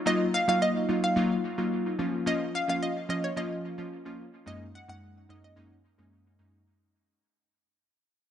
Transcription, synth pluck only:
0.07 D#5
0.34 F5
0.49 F5
0.62 D#5
1.04 F5
2.27 D#5
2.55 F5
2.69 F5
2.83 D#5
3.10 D#5
3.24 C#5
3.37 D#5
4.47 D#5
4.75 F#5
4.89 F#5
5.30 D#5
5.44 D#5

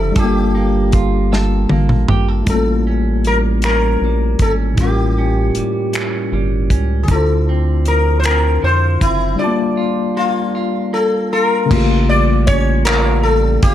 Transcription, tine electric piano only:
Already playing: F3 D4 E4 C5
0.12 G3 D4
0.18 F4 A4
0.23 A#3
2.42 A3 E4
2.47 G3 C#4
2.51 A#3 F4
4.73 A2 E4
4.78 G3 C#4
4.83 F4 A#4
7.04 D3 D4
7.10 E4 F4
7.16 C5
9.36 G3 D4
9.41 F4 A5
9.47 A#3
11.66 C#3 A3
11.70 A#3 F4
11.75 G4

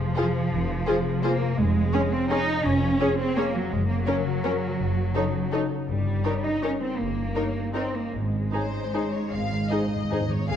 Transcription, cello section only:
Already playing: F3
1.23 A#3
1.58 G#3
2.12 C4
2.31 D#4
2.65 C#4
3.18 C4
3.36 A#3
3.55 F#3
3.72 G#3
3.88 A#3
4.07 F#3
5.88 G3
6.43 D#4
6.63 C#4
6.81 C4
6.99 A#3
7.74 C4
7.93 A#3
8.13 G#3
10.48 C#3

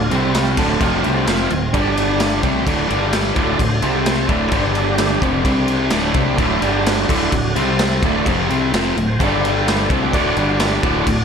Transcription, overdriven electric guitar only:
0.11 C3 G3 C4
0.57 D2 A2 D3
0.81 F2 C3 F3
1.04 C3 G3 C4
1.27 F2 C3 F3
1.50 D2 A2
1.73 G2 D3 G3
2.43 C3 G3 C4
2.66 D2 A2 D3
2.88 G2 D3 G3
3.35 D2 A2 D3
3.59 D2 A2
3.82 C3 G3 C4
4.29 D2 A2 D3
4.52 G2 D3 G3
5.22 F2 C3 F3
5.44 C3 G3 C4
5.91 D2 A2 D3
6.14 C3 G3 C4
6.38 D2 A2 D3
6.61 G2 D3 G3
7.09 D2 A2 D3
7.31 D2 A2
7.56 C3 G3 C4
8.03 D2 A2 D3
8.26 F2 C3 F3
8.50 C3 G3 C4
8.73 F2 C3 F3
8.97 D2 A2
9.19 G2 D3 G3
9.90 C3 G3 C4
10.14 D2 A2 D3
10.38 G2 D3 G3
10.83 D2 A2 D3
11.07 D2 A2

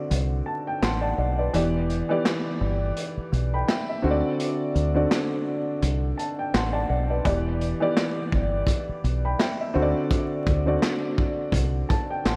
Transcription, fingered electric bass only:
0.11 C2
0.82 A1
1.18 B1
1.54 E1
2.61 G1
3.17 muted fingered electric bass stroke
3.32 B1
4.04 D2
4.75 D2
5.82 C2
6.54 A1
6.90 B1
7.25 E1
8.32 G1
8.89 muted fingered electric bass stroke
9.04 B1
9.75 D2
10.47 D2
11.52 C2
12.25 A1

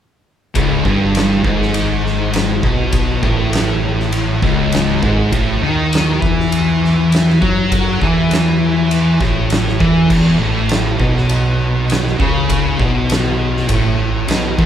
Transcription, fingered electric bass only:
0.55 C#1
0.85 G1
1.45 G#1
2.63 B1
3.23 A1
4.42 C#1
5.03 G#1
5.33 A1
5.62 D#2
6.22 E2
7.42 F#2
8.01 E2
9.20 A1
9.80 E2
10.10 E1
10.40 A1
10.99 B1
12.19 C#2
12.79 B1
13.69 A1
14.29 B1
14.58 E1

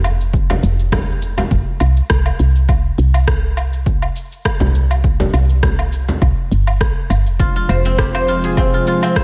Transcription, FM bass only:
Already playing: F1
0.63 F1
1.51 F1
1.81 C2
2.10 C2
2.40 C2
2.98 C2
4.61 C2
5.33 C2
6.22 C2
6.51 G1
6.81 A#1
7.10 G1
7.26 F1
7.69 F1

